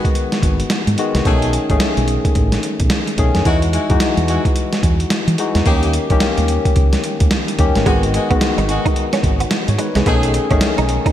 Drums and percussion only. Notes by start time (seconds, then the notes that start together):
0.05 kick, closed hi-hat
0.15 closed hi-hat
0.32 snare, closed hi-hat
0.43 kick, closed hi-hat
0.60 closed hi-hat
0.70 snare, closed hi-hat
0.87 closed hi-hat
0.98 closed hi-hat
1.15 snare, closed hi-hat
1.25 kick, closed hi-hat
1.42 closed hi-hat
1.53 closed hi-hat
1.70 kick, closed hi-hat
1.80 snare, closed hi-hat
1.97 closed hi-hat
2.08 closed hi-hat
2.25 kick, closed hi-hat
2.35 kick, closed hi-hat
2.52 snare, closed hi-hat
2.63 closed hi-hat
2.80 kick, closed hi-hat
2.90 snare, closed hi-hat
3.07 closed hi-hat
3.18 kick, closed hi-hat
3.35 snare, closed hi-hat
3.45 kick, closed hi-hat
3.62 closed hi-hat
3.73 closed hi-hat
3.90 kick, closed hi-hat
4.00 snare, closed hi-hat
4.17 closed hi-hat
4.28 closed hi-hat
4.45 kick, closed hi-hat
4.56 closed hi-hat
4.73 snare, closed hi-hat
4.83 kick, closed hi-hat
5.00 closed hi-hat
5.10 snare, closed hi-hat
5.28 closed hi-hat
5.38 closed hi-hat
5.55 snare, closed hi-hat
5.66 kick, closed hi-hat
5.83 closed hi-hat
5.93 closed hi-hat
6.10 kick, closed hi-hat
6.20 snare, closed hi-hat
6.38 closed hi-hat
6.48 closed hi-hat
6.65 kick, closed hi-hat
6.76 kick, closed hi-hat
6.93 snare, closed hi-hat
7.04 closed hi-hat
7.20 kick, closed hi-hat
7.31 snare, closed hi-hat
7.48 closed hi-hat
7.59 kick, closed hi-hat
7.76 snare, closed hi-hat
7.86 kick, closed hi-hat
8.03 closed hi-hat
8.14 closed hi-hat
8.31 kick, closed hi-hat
8.41 snare, closed hi-hat
8.58 closed hi-hat
8.69 closed hi-hat
8.86 kick, closed hi-hat
8.96 closed hi-hat
9.13 snare, closed hi-hat
9.23 kick, closed hi-hat
9.40 closed hi-hat
9.51 snare, closed hi-hat
9.68 closed hi-hat
9.79 closed hi-hat
9.95 snare, closed hi-hat
10.06 kick, closed hi-hat
10.23 closed hi-hat
10.34 closed hi-hat
10.51 kick, closed hi-hat
10.61 snare, closed hi-hat
10.78 closed hi-hat
10.89 closed hi-hat
11.06 kick, closed hi-hat